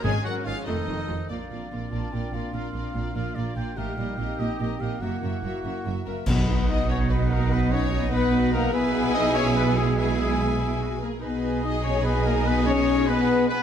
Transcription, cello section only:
\new Staff \with { instrumentName = "Cello section" } { \clef bass \time 6/8 \key f \phrygian \tempo 4. = 97 aes,8 r8 aes,8 f,8 f,8 f,8 | \key bes \major bes,8 bes,8 bes,8 bes,8 bes,8 bes,8 | bes,8 bes,8 bes,8 bes,8 bes,8 bes,8 | bes,8 bes,8 bes,8 bes,8 bes,8 bes,8 |
ges,8 ges,8 ges,8 ges,8 ges,8 ges,8 | \key b \major b,2.~ | b,2. | b,2.~ |
b,2~ b,8 r8 | b,2.~ | b,2. | }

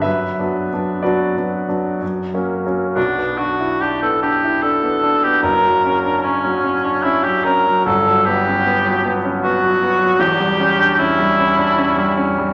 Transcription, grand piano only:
<<
  \new Staff \with { instrumentName = "Grand piano" } { \time 3/4 \key b \minor \tempo 4 = 74 <b' e''>4 <fis' b' d''>4 r4 | r2. | r2. | r2. |
r2. | }
  \new Staff \with { instrumentName = "Grand piano" } { \time 3/4 \key b \minor \tuplet 3/2 { fis,8 <fis b d'>8 <fis b d'>8 <fis b d'>8 <fis b d'>8 <fis b d'>8 fis,8 <fis ais cis'>8 <fis ais cis'>8 } | <b,, b,>16 b16 d'16 e'16 d'16 b16 d'16 e'16 d'16 b16 d'16 b16 | <fis,, fis,>16 fis16 cis'16 d'16 cis'16 fis16 cis'16 d'16 cis'16 fis16 cis'16 fis16 | <g,, g,>16 fis16 b16 cis'16 b16 fis16 b16 cis'16 b16 fis16 b16 fis16 |
<e,, e,>16 g16 cis'16 d'16 cis'16 g16 cis'16 d'16 cis'16 g16 cis'16 g16 | }
>>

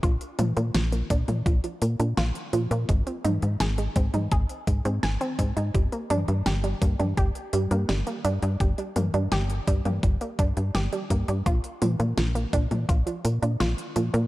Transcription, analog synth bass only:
\new Staff \with { instrumentName = "Analog synth bass" } { \clef bass \time 4/4 \key g \phrygian \tempo 4 = 84 bes,,16 r16 bes,16 bes,16 bes,,8 bes,16 bes,16 bes,,16 r16 bes,16 bes,16 bes,,16 r16 bes,16 bes,16 | aes,,16 r16 aes,16 aes,16 aes,,8 aes,16 aes,16 aes,,16 r16 aes,16 aes,16 aes,,16 r16 aes,16 aes,16 | g,,16 r16 g,16 g,16 g,,8 g,16 g,16 g,,16 r16 g,16 g,16 g,,16 r16 g,16 g,16 | g,,16 r16 g,16 g,16 g,,8 g,16 g,16 g,,16 r16 g,16 g,16 g,,16 r16 g,16 g,16 |
bes,,16 r16 bes,16 bes,16 bes,,8 bes,16 bes,16 bes,,16 r16 bes,16 bes,16 bes,,16 r16 bes,16 bes,16 | }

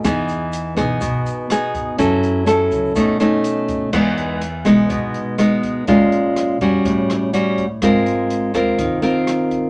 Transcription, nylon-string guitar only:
\new Staff \with { instrumentName = "Nylon-string guitar" } { \time 4/4 \key e \major \tempo 4 = 124 << { <b dis' gis'>4. <b dis' gis'>4. <b dis' gis'>4 | <cis' e' a'>4 <cis' e' a'>4 <a cis' dis'>8 <a cis' dis'>4. | <gis b dis'>4 r8 <gis b dis'>4. <gis b dis'>4 | <gis cis' eis'>4. <g cis' fis'>4. <g cis' fis'>8 r8 |
<bis eis' ais'>4. <bis eis' ais'>4 <bis eis' ais'>4. | } \\ { e2 b,2 | fis2 b,2 | e2 b,2 | ais,2 a,2 |
gis2 dis2 | } >> }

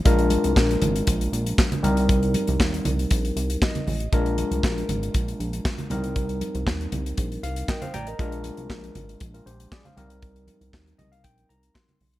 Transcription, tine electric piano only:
\new Staff \with { instrumentName = "Tine electric piano" } { \time 4/4 \key c \minor \tempo 4 = 118 << { r1 | r2. ees''4 | r1 | r2 r8 f''8 <bes' ees'' g''>16 <c'' f''>16 <d'' g'' bes''>16 <bes' ees''>16~ |
<bes' ees''>16 r2 <f' bes'>16 <g' c''>8 <aes' d''>16 <c'' f''>8 r16 | r4. ees''16 f''16 g''8 bes''8 c'''4 | } \\ { <aes d' f' bes'>2.~ <aes d' f' bes'>8 <g c' ees' bes'>8~ | <g c' ees' bes'>2.~ <g c' ees' bes'>8 r8 | <aes d' f' bes'>2.~ <aes d' f' bes'>8 <g c' ees' bes'>8~ | <g c' ees' bes'>2.~ <g c' ees' bes'>8 r8 |
<aes d' f' bes'>2.~ <aes d' f' bes'>8 <g c' ees' bes'>8~ | <g c' ees' bes'>2.~ <g c' ees' bes'>8 r8 | } >> }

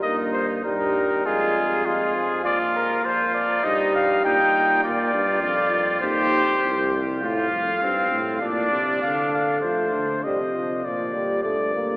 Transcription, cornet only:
\new Staff \with { instrumentName = "Cornet" } { \time 4/4 \key ees \major \tempo 4 = 100 ees''8 c''8 bes'4 aes'4 f'4 | d''8 bes'8 c''8 d''8 ees''8 f''8 g''4 | d''4 d''4 c''4. r8 | f''2 d''4 f''8 f''8 |
c''4 ees''4 d''4 d''4 | }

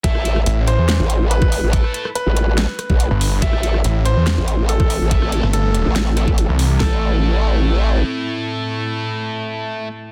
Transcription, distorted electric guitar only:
\new Staff \with { instrumentName = "Distorted electric guitar" } { \time 4/4 \key a \minor \tempo 4 = 142 <a e' a'>8 <a e' a'>8 r2. | <a e' a'>8 <a e' a'>8 r2. | <a e' a'>8 <a e' a'>8 r2. | <a e' a'>8 <a e' a'>8 r4. <a e' a'>8 r4 |
<a e' a'>1~ | <a e' a'>1 | }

